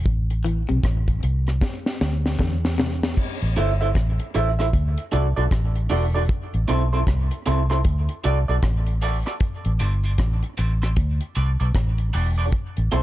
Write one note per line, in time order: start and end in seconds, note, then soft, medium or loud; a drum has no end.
0.06 0.65 A1 medium
0.06 kick loud
0.06 closed hi-hat medium
0.30 closed hi-hat medium
0.44 0.62 E3 medium
0.44 closed hi-hat medium
0.69 0.83 B1 medium
0.69 0.79 C3 medium
0.69 closed hi-hat soft
0.83 1.19 A1 medium
0.83 kick medium
0.83 cross-stick loud
0.83 closed hi-hat medium
1.08 kick medium
1.08 closed hi-hat medium
1.23 1.59 C2 medium
1.23 closed hi-hat medium
1.47 cross-stick medium
1.47 closed hi-hat soft
1.61 kick loud
1.61 snare medium
1.86 snare medium
2.01 2.36 D2 loud
2.01 snare medium
2.26 snare medium
2.39 3.14 E2 medium
2.39 2.56 D3 medium
2.39 kick loud
2.39 snare medium
2.65 snare medium
2.78 2.95 C3 medium
2.78 snare loud
3.03 snare medium
3.17 kick loud
3.17 crash medium
3.42 3.56 A1 medium
3.42 closed hi-hat soft
3.57 3.92 G1 medium
3.57 3.70 E4 medium
3.57 3.70 A4 medium
3.57 3.70 C5 medium
3.57 3.70 E5 medium
3.57 closed hi-hat medium
3.81 3.88 E4 medium
3.81 3.87 A4 medium
3.81 3.87 C5 medium
3.81 3.87 E5 medium
3.95 4.18 A1 loud
3.95 kick loud
3.95 cross-stick loud
3.95 closed hi-hat medium
4.20 closed hi-hat medium
4.34 4.70 A1 medium
4.34 4.48 E4 medium
4.34 4.48 A4 medium
4.34 4.48 C5 medium
4.34 4.48 E5 loud
4.34 closed hi-hat medium
4.59 4.66 E4 medium
4.59 4.65 A4 medium
4.59 4.65 C5 medium
4.59 4.65 E5 medium
4.59 cross-stick medium
4.73 4.96 D2 loud
4.73 kick loud
4.73 closed hi-hat medium
4.98 closed hi-hat medium
5.12 5.35 C2 medium
5.12 5.25 D4 medium
5.12 5.26 F#4 medium
5.12 5.26 A4 medium
5.12 5.26 D5 medium
5.12 closed hi-hat medium
5.36 5.50 B1 medium
5.36 5.43 D4 medium
5.36 5.43 F#4 medium
5.36 5.43 A4 medium
5.36 5.43 D5 medium
5.36 closed hi-hat soft
5.51 5.87 A1 medium
5.51 kick loud
5.51 cross-stick loud
5.51 closed hi-hat loud
5.75 closed hi-hat soft
5.90 6.26 E1 medium
5.90 6.03 D4 medium
5.90 6.03 F#4 medium
5.90 6.04 A4 medium
5.90 6.04 D5 medium
5.90 open hi-hat medium
6.14 6.21 D4 medium
6.14 6.21 F#4 medium
6.14 6.21 A4 medium
6.14 6.21 D5 medium
6.29 kick loud
6.29 closed hi-hat medium
6.54 6.67 A1 medium
6.54 closed hi-hat soft
6.68 7.04 B1 medium
6.68 6.81 C4 loud
6.68 6.82 E4 medium
6.68 6.82 A4 loud
6.68 6.82 C5 loud
6.68 closed hi-hat medium
6.93 7.00 C4 soft
6.93 6.99 E4 soft
6.93 6.99 A4 soft
6.93 6.99 C5 medium
7.07 7.29 C2 medium
7.07 kick loud
7.07 cross-stick loud
7.07 closed hi-hat loud
7.31 closed hi-hat medium
7.46 7.82 C2 medium
7.46 7.59 C4 medium
7.46 7.59 E4 medium
7.46 7.60 A4 medium
7.46 7.60 C5 medium
7.46 closed hi-hat medium
7.70 7.77 C4 medium
7.70 7.77 E4 medium
7.70 7.77 A4 medium
7.70 7.77 C5 medium
7.70 cross-stick medium
7.70 closed hi-hat soft
7.85 8.07 D2 loud
7.85 kick loud
7.85 closed hi-hat medium
8.09 closed hi-hat medium
8.24 8.47 C2 loud
8.24 8.37 D4 medium
8.24 8.37 F#4 medium
8.24 8.38 A4 medium
8.24 8.38 D5 medium
8.24 closed hi-hat medium
8.48 8.62 B1 medium
8.48 8.55 D4 medium
8.48 8.55 F#4 soft
8.48 8.55 A4 medium
8.48 8.55 D5 medium
8.63 9.22 A1 medium
8.63 kick loud
8.63 cross-stick loud
8.63 closed hi-hat loud
8.86 closed hi-hat soft
9.01 9.15 D4 medium
9.01 9.16 F#4 medium
9.01 9.16 A4 medium
9.01 9.16 D5 medium
9.01 open hi-hat medium
9.26 9.33 D4 medium
9.26 9.33 F#4 medium
9.26 9.33 A4 medium
9.26 9.33 D5 medium
9.26 cross-stick medium
9.26 closed hi-hat soft
9.40 kick loud
9.40 closed hi-hat medium
9.65 9.79 A1 medium
9.65 closed hi-hat soft
9.80 10.16 G1 medium
9.80 9.93 C4 medium
9.80 9.93 E4 medium
9.80 9.94 A4 medium
9.80 9.94 C5 loud
9.80 closed hi-hat medium
10.04 10.11 C4 soft
10.04 10.11 E4 medium
10.04 10.11 A4 medium
10.04 10.10 C5 medium
10.04 closed hi-hat soft
10.18 10.41 A1 loud
10.18 kick loud
10.18 cross-stick loud
10.18 closed hi-hat loud
10.43 closed hi-hat medium
10.57 10.94 A1 loud
10.57 10.71 C4 medium
10.57 10.71 E4 medium
10.57 10.71 A4 medium
10.57 10.71 C5 medium
10.57 closed hi-hat medium
10.82 10.89 C4 medium
10.82 10.89 E4 medium
10.82 10.88 A4 medium
10.82 10.88 C5 medium
10.82 cross-stick medium
10.96 11.19 D2 loud
10.96 kick loud
10.96 closed hi-hat medium
11.21 closed hi-hat medium
11.35 11.58 C2 medium
11.35 11.49 D4 medium
11.35 11.49 F#4 medium
11.35 11.49 A4 medium
11.35 11.49 D5 medium
11.35 closed hi-hat medium
11.60 11.74 B1 medium
11.60 11.67 D4 medium
11.60 11.67 F#4 medium
11.60 11.66 A4 medium
11.60 11.66 D5 medium
11.60 closed hi-hat soft
11.75 12.11 A1 medium
11.75 kick loud
11.75 cross-stick loud
11.75 closed hi-hat loud
11.98 closed hi-hat soft
12.13 12.50 E1 loud
12.13 12.27 D4 medium
12.13 12.27 F#4 loud
12.13 12.27 A4 medium
12.13 12.27 D5 medium
12.13 open hi-hat medium
12.38 12.45 D4 medium
12.38 12.45 F#4 medium
12.38 12.44 A4 medium
12.38 12.44 D5 medium
12.52 kick loud
12.52 closed hi-hat medium
12.77 12.91 A1 medium
12.77 closed hi-hat soft
12.92 13.03 B1 medium
12.92 13.03 C4 medium
12.92 13.03 E4 medium
12.92 13.03 A4 medium
12.92 13.03 C5 loud
12.92 closed hi-hat medium